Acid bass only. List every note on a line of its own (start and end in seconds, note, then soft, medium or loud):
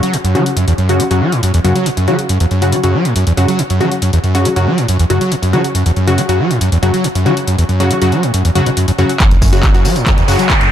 0.03 0.15 F#3 medium
0.13 0.17 A2 loud
0.24 0.36 F#2 medium
0.35 0.44 F#3 loud
0.56 0.66 F#2 medium
0.68 0.73 E2 loud
0.78 1.01 F#2 medium
1.00 1.03 F#3 loud
1.11 1.23 F#2 medium
1.21 1.34 F#3 loud
1.32 1.41 A2 loud
1.43 1.52 F#2 medium
1.54 1.60 E2 loud
1.64 1.74 F#2 loud
1.75 1.88 F#3 medium
1.86 1.90 A2 loud
1.97 2.09 F#2 medium
2.08 2.17 F#3 loud
2.29 2.38 F#2 medium
2.40 2.46 E2 loud
2.51 2.74 F#2 medium
2.73 2.76 F#3 loud
2.83 2.96 F#2 medium
2.94 3.07 F#3 loud
3.05 3.14 A2 loud
3.16 3.25 F#2 medium
3.27 3.33 E2 loud
3.37 3.46 F#2 loud
3.48 3.60 F#3 medium
3.59 3.63 A2 loud
3.70 3.82 F#2 medium
3.80 3.90 F#3 loud
4.02 4.11 F#2 medium
4.13 4.19 E2 loud
4.24 4.47 F#2 medium
4.45 4.49 F#3 loud
4.56 4.68 F#2 medium
4.67 4.79 F#3 loud
4.78 4.87 A2 loud
4.89 4.98 F#2 medium
4.99 5.05 E2 loud
5.10 5.19 F#2 loud
5.21 5.33 F#3 medium
5.32 5.35 A2 loud
5.42 5.55 F#2 medium
5.53 5.62 F#3 loud
5.75 5.84 F#2 medium
5.86 5.92 E2 loud
5.96 6.19 F#2 medium
6.18 6.22 F#3 loud
6.29 6.41 F#2 medium
6.39 6.52 F#3 loud
6.50 6.59 A2 loud
6.61 6.70 F#2 medium
6.72 6.78 E2 loud
6.82 6.92 F#2 loud
6.94 7.06 F#3 medium
7.04 7.08 A2 loud
7.15 7.27 F#2 medium
7.26 7.35 F#3 loud
7.47 7.56 F#2 medium
7.58 7.64 E2 loud
7.69 7.92 F#2 medium
7.91 7.94 F#3 loud
8.02 8.13 F#2 medium
8.12 8.25 F#3 loud
8.23 8.32 A2 loud
8.34 8.43 F#2 medium
8.45 8.51 E2 loud
8.55 8.61 F#2 medium
8.66 8.70 B2 loud
8.77 8.86 F#2 medium
8.88 8.91 F#2 loud
8.98 9.05 F#2 loud
9.20 9.29 F#2 medium
9.31 9.37 E2 loud
9.42 9.65 F#2 medium
9.63 9.67 F#3 loud
9.74 9.86 F#2 medium
9.85 9.97 F#3 loud
9.96 10.05 A2 loud
10.06 10.16 F#2 medium
10.17 10.23 E2 loud
10.28 10.37 F#2 loud
10.39 10.51 F#3 medium
10.50 10.53 A2 loud
10.61 10.72 F#2 medium